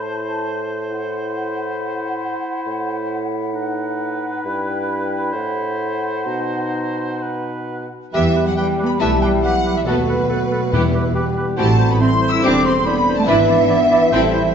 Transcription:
0.00 2.38 A2 medium
0.00 0.62 E4 soft
0.00 3.21 C5 soft
0.00 0.68 A5 medium
0.90 3.55 E4 medium
0.90 4.40 F#5 medium
2.66 4.40 A2 medium
3.54 4.47 D#4 soft
3.54 5.34 B4 medium
4.45 5.35 G2 medium
4.45 6.28 E4 medium
4.45 5.33 G5 medium
5.33 6.26 A2 medium
5.33 7.24 C5 medium
5.33 7.91 F#5 medium
6.26 7.87 B2 medium
6.26 7.91 D#4 medium
7.22 7.91 B4 soft
8.13 8.50 E2 medium
8.13 9.83 E3 medium
8.13 8.44 E3 medium
8.13 9.83 G3 medium
8.13 11.54 B3 medium
8.13 8.34 B3 medium
8.13 8.23 G4 medium
8.13 8.34 G4 medium
8.13 9.83 G4 medium
8.13 8.97 G4 medium
8.13 8.23 B4 soft
8.13 8.44 E5 medium
8.13 8.35 E5 medium
8.36 8.46 G4 soft
8.36 8.46 B4 soft
8.45 8.56 F#3 soft
8.45 8.57 F#5 medium
8.57 8.85 G3 medium
8.57 8.67 G4 soft
8.57 8.67 B4 soft
8.57 8.85 G5 medium
8.57 8.65 G5 medium
8.79 8.89 G4 soft
8.79 8.89 B4 soft
8.85 9.00 B3 medium
8.85 9.00 B5 medium
8.85 8.92 B5 medium
8.99 9.37 B1 soft
8.99 9.21 A3 medium
8.99 9.20 B3 medium
8.99 9.85 E4 medium
8.99 9.20 G4 medium
8.99 9.10 G4 soft
8.99 9.11 B4 soft
8.99 9.21 E5 soft
8.99 9.21 A5 medium
8.99 9.09 A5 medium
9.20 9.42 G3 medium
9.20 9.32 G4 soft
9.20 9.32 B4 soft
9.20 9.44 G5 medium
9.20 9.30 G5 medium
9.42 9.75 F#3 medium
9.42 9.54 G4 medium
9.42 9.54 B4 soft
9.42 9.75 F#5 medium
9.42 9.76 F#5 medium
9.65 9.74 G4 soft
9.65 9.75 B4 soft
9.75 9.86 E3 medium
9.75 9.87 E5 medium
9.86 10.23 D#2 medium
9.86 11.33 B2 medium
9.86 10.72 F#3 soft
9.86 10.71 A3 medium
9.86 10.07 B3 soft
9.86 10.71 F#4 medium
9.86 10.29 F#4 medium
9.86 10.07 F#4 medium
9.86 9.96 A4 soft
9.86 10.07 A4 medium
9.86 11.36 B4 medium
9.86 11.34 B4 medium
9.86 9.97 B4 soft
10.08 10.17 A4 soft
10.08 10.19 B4 soft
10.29 10.72 F#4 medium
10.29 10.39 A4 medium
10.29 10.40 B4 soft
10.51 10.61 A4 soft
10.51 10.61 B4 soft
10.72 11.08 E2 medium
10.72 11.32 E2 medium
10.72 14.12 E3 medium
10.72 13.28 G3 medium
10.72 10.93 B3 medium
10.72 11.14 E4 medium
10.72 10.93 E4 medium
10.72 11.57 G4 soft
10.72 10.83 G4 soft
10.72 10.94 G4 soft
10.72 10.83 B4 soft
10.94 11.03 G4 soft
10.94 11.04 B4 soft
11.15 11.59 G4 medium
11.15 11.25 G4 soft
11.15 11.25 B4 medium
11.36 11.46 G4 soft
11.36 11.47 B4 soft
11.56 11.94 A1 medium
11.56 11.88 A3 medium
11.56 13.24 C4 medium
11.56 11.78 C4 medium
11.56 11.67 E4 medium
11.56 11.78 E4 medium
11.56 12.00 F#4 medium
11.56 11.78 G4 medium
11.56 13.24 A4 medium
11.56 11.67 C5 soft
11.56 11.88 A5 medium
11.56 11.89 A5 medium
11.79 11.88 E4 soft
11.79 11.89 C5 medium
11.90 12.00 B3 medium
11.90 12.01 B5 medium
12.00 12.09 C4 medium
12.00 12.09 E4 soft
12.00 12.42 E4 medium
12.00 12.10 C5 soft
12.00 12.29 C6 medium
12.21 12.31 E4 soft
12.21 12.31 C5 medium
12.29 12.43 E4 medium
12.29 12.44 E6 medium
12.43 12.79 E1 medium
12.43 12.64 C4 medium
12.43 12.86 C4 medium
12.43 12.65 D4 medium
12.43 12.53 E4 soft
12.43 12.64 E4 medium
12.43 12.63 G4 medium
12.43 12.53 C5 medium
12.43 12.64 D6 loud
12.43 12.65 D6 medium
12.63 12.73 C4 medium
12.63 12.73 E4 medium
12.63 12.74 C5 soft
12.63 12.86 C6 medium
12.84 13.17 B3 medium
12.84 13.29 D4 medium
12.84 12.95 E4 medium
12.84 12.96 C5 medium
12.84 13.17 B5 medium
12.84 13.18 B5 medium
13.06 13.16 E4 medium
13.06 13.17 C5 soft
13.17 13.22 A3 medium
13.17 13.28 A5 medium
13.27 13.63 G#1 medium
13.27 14.55 E3 medium
13.27 14.12 B3 medium
13.27 13.48 D4 medium
13.27 14.12 D4 medium
13.27 13.37 E4 medium
13.27 13.72 E4 medium
13.27 13.48 E4 medium
13.27 13.47 B4 medium
13.27 14.12 B4 medium
13.27 13.38 D5 medium
13.27 14.55 E5 medium
13.47 13.57 E4 medium
13.47 13.59 D5 soft
13.69 14.12 B3 medium
13.69 13.79 E4 medium
13.69 13.80 D5 medium
13.91 14.00 E4 medium
13.91 14.01 D5 medium
14.12 14.48 A1 medium
14.12 14.55 E3 medium
14.12 14.55 G3 medium
14.12 14.55 C4 medium
14.12 14.33 C4 medium
14.12 14.55 C4 medium
14.12 14.22 E4 medium
14.12 14.33 E4 medium
14.12 14.55 A4 medium
14.12 14.33 A4 medium
14.12 14.22 C5 medium
14.34 14.43 E4 medium
14.34 14.43 C5 medium

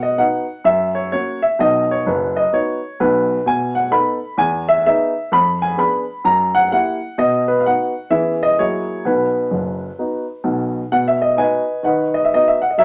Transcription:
0.00 0.12 B2 medium
0.00 0.19 D#5 medium
0.00 0.18 F#5 medium
0.18 0.44 B3 soft
0.18 0.44 D#4 soft
0.18 0.44 F#4 soft
0.18 0.65 F#5 medium
0.64 1.05 F#2 medium
0.64 0.95 E5 medium
0.95 1.11 C#5 medium
1.12 1.38 A#3 soft
1.12 1.38 C#4 soft
1.12 1.39 F#4 soft
1.12 1.42 C#5 medium
1.42 1.59 E5 medium
1.59 1.97 B1 medium
1.59 1.96 B2 medium
1.59 1.90 D#5 medium
1.91 2.07 C#5 medium
2.06 2.43 F#1 medium
2.06 2.44 F#2 medium
2.06 2.36 B4 medium
2.36 2.53 D#5 medium
2.53 2.78 B3 soft
2.53 2.78 D#4 soft
2.53 2.79 F#4 soft
2.53 3.00 C#5 medium
3.00 3.37 B1 medium
3.00 3.37 B2 medium
3.00 3.46 B4 medium
3.46 3.85 B2 medium
3.46 3.76 G#5 medium
3.75 3.92 F#5 medium
3.91 4.17 B3 soft
3.91 4.17 D#4 soft
3.91 4.17 A4 soft
3.91 4.39 B5 medium
4.37 4.78 E2 medium
4.37 4.69 G#5 medium
4.69 4.85 E5 medium
4.86 5.12 B3 soft
4.86 5.12 D#4 soft
4.86 5.12 G#4 soft
4.86 5.33 E5 medium
5.32 5.71 F2 medium
5.32 5.62 B5 loud
5.62 5.79 G#5 medium
5.77 6.03 B3 soft
5.77 6.03 D4 soft
5.77 6.04 G#4 soft
5.77 6.25 B5 medium
6.24 6.64 F#2 medium
6.24 6.55 A#5 medium
6.55 6.71 F#5 medium
6.72 6.97 A#3 soft
6.72 6.98 E4 soft
6.72 6.98 G4 soft
6.72 7.19 F#5 medium
7.18 7.58 B2 medium
7.18 7.48 D#5 medium
7.48 7.60 B4 medium
7.60 7.65 F5 medium
7.66 7.92 B3 soft
7.66 7.92 D#4 soft
7.66 7.92 F#4 soft
7.66 8.12 F#5 medium
8.10 8.51 E3 medium
8.10 8.36 B3 soft
8.10 8.37 C#4 soft
8.10 8.37 G#4 soft
8.10 8.41 E5 medium
8.43 8.59 D#5 medium
8.59 8.98 F#3 medium
8.59 8.84 A#3 soft
8.59 8.85 E4 soft
8.59 8.85 G#4 soft
8.59 9.05 C#5 medium
9.05 9.42 B1 soft
9.05 9.42 B2 medium
9.05 10.46 B4 medium
9.51 9.89 F#1 soft
9.51 9.88 F#2 soft
9.99 10.24 B3 soft
9.99 10.25 D#4 soft
9.99 10.24 F#4 soft
10.44 10.82 B1 medium
10.44 10.82 B2 medium
10.92 11.31 B2 medium
10.92 11.07 F#5 medium
11.08 11.22 E5 medium
11.22 11.38 D#5 medium
11.37 11.63 B3 soft
11.37 11.63 D#4 soft
11.37 11.63 F#4 soft
11.37 11.82 B4 medium
11.37 11.82 D#5 medium
11.37 11.85 G#5 medium
11.83 12.23 D#3 medium
11.83 12.13 B4 medium
11.83 12.12 D#5 soft
11.83 12.14 F#5 medium
12.14 12.23 D#5 medium
12.25 12.32 E5 medium
12.34 12.59 B3 soft
12.34 12.59 D#4 soft
12.34 12.59 F#4 soft
12.34 12.48 D#5 medium
12.48 12.62 E5 medium
12.62 12.70 F#5 medium
12.70 12.78 D#5 soft
12.78 12.85 F#3 medium
12.78 12.85 A#4 medium
12.78 12.85 C#5 medium
12.78 12.85 E5 medium

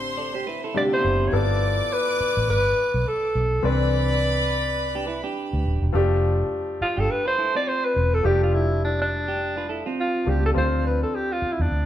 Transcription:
0.00 0.59 A1 loud
0.00 0.71 D3 medium
0.00 0.72 A3 medium
0.00 0.72 C4 medium
0.00 0.72 G4 medium
0.00 1.00 C5 medium
0.00 1.00 C6 medium
0.17 0.34 A4 medium
0.17 0.33 D5 medium
0.34 0.46 G4 medium
0.34 0.46 C5 medium
0.47 0.63 E4 soft
0.47 0.63 B4 medium
0.64 0.76 E4 medium
0.64 0.75 A4 medium
0.74 1.33 C3 soft
0.74 1.32 D3 soft
0.74 1.33 A3 soft
0.74 0.92 D4 medium
0.74 0.83 F4 soft
0.74 0.92 G4 medium
0.74 0.84 D5 medium
0.81 1.36 G4 medium
0.93 1.32 B3 medium
0.93 1.31 E4 medium
0.93 1.29 C5 loud
1.04 1.28 F#1 medium
1.28 1.37 C#5 medium
1.32 1.80 G1 loud
1.32 3.59 F3 medium
1.32 3.59 B3 medium
1.32 3.60 E4 medium
1.32 3.60 A4 medium
1.32 3.31 D5 medium
1.32 1.94 D5 medium
1.32 3.31 D6 loud
1.93 2.50 B4 loud
2.20 muted fingered electric bass stroke soft
2.37 2.47 A1 medium
2.49 2.72 G1 medium
2.49 3.09 B4 loud
2.94 3.04 B1 medium
3.08 3.65 A4 medium
3.35 3.59 B1 medium
3.63 5.21 C2 loud
3.63 5.90 E3 medium
3.63 5.90 C4 medium
3.63 5.91 D4 medium
3.63 5.62 B4 loud
3.63 5.91 B4 medium
3.63 5.34 D5 loud
3.63 5.62 B5 loud
4.95 5.07 D4 medium
4.95 5.07 G4 medium
5.07 5.24 E4 medium
5.07 5.23 B4 medium
5.24 5.91 D4 medium
5.24 5.90 G4 medium
5.53 5.63 D2 medium
5.65 5.79 D#1 medium
5.82 5.92 E1 medium
5.93 6.42 F1 loud
5.93 8.20 F3 medium
5.93 8.21 A3 medium
5.93 8.21 D4 medium
5.93 8.22 G4 medium
6.81 7.01 F4 medium
6.81 muted fingered electric bass stroke soft
6.97 7.08 G1 medium
6.97 7.25 D4 medium
6.97 7.24 G4 medium
6.97 7.12 A4 medium
7.11 7.27 B4 medium
7.26 7.38 F4 medium
7.26 7.38 B4 medium
7.26 7.54 C5 loud
7.38 7.55 E4 medium
7.38 7.54 A4 medium
7.55 8.22 C4 soft
7.55 8.21 F4 medium
7.55 7.69 D5 medium
7.68 7.86 C5 medium
7.85 8.15 B4 medium
7.96 8.20 E1 medium
8.14 8.27 A4 medium
8.23 9.82 F1 loud
8.23 10.22 F3 medium
8.23 10.22 A3 medium
8.23 10.22 D4 medium
8.23 10.23 G4 medium
8.23 8.42 G4 medium
8.43 8.56 F4 medium
8.55 8.83 E4 medium
8.84 8.99 D4 medium
9.01 9.83 D4 loud
9.28 9.56 D4 medium
9.28 9.56 G4 medium
9.57 9.69 F4 medium
9.57 9.69 B4 medium
9.69 9.85 E4 medium
9.69 9.85 A4 medium
9.86 10.53 C4 medium
9.86 10.52 F4 medium
10.00 10.30 F4 medium
10.25 10.51 C#2 medium
10.25 10.52 F3 soft
10.25 10.55 A3 soft
10.25 10.54 D4 soft
10.25 10.56 G4 soft
10.25 10.45 G4 medium
10.46 10.51 A4 medium
10.54 11.03 D2 loud
10.54 11.86 F3 medium
10.54 11.86 C4 medium
10.54 11.86 D4 medium
10.54 11.86 F4 medium
10.54 10.84 C5 medium
10.87 11.01 B4 medium
11.03 11.16 A4 medium
11.15 11.34 G4 medium
11.32 11.54 F4 medium
11.42 muted fingered electric bass stroke medium
11.53 11.63 E4 medium
11.60 11.69 E2 medium
11.60 11.86 D4 medium
11.71 11.86 D2 medium

